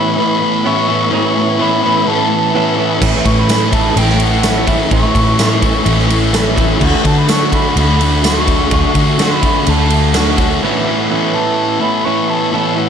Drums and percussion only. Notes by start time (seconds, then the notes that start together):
3.02 kick, crash
3.26 kick, ride
3.49 snare, ride, tambourine
3.73 kick, ride
3.97 ride
4.09 snare
4.20 ride
4.43 snare, ride, tambourine
4.67 kick, ride
4.91 kick, ride
5.15 kick, ride
5.39 snare, ride, tambourine
5.62 kick, ride
5.86 ride
5.99 snare
6.10 ride
6.34 snare, ride, tambourine
6.58 kick, ride
6.81 kick, crash
7.05 kick, ride
7.29 snare, ride, tambourine
7.52 kick, ride
7.77 ride
8.01 ride
8.24 snare, ride, tambourine
8.48 kick, ride
8.71 kick, ride
8.95 kick, ride
9.19 snare, ride, tambourine
9.43 kick, ride
9.66 ride
9.90 ride
10.14 snare, ride, tambourine
10.38 kick, ride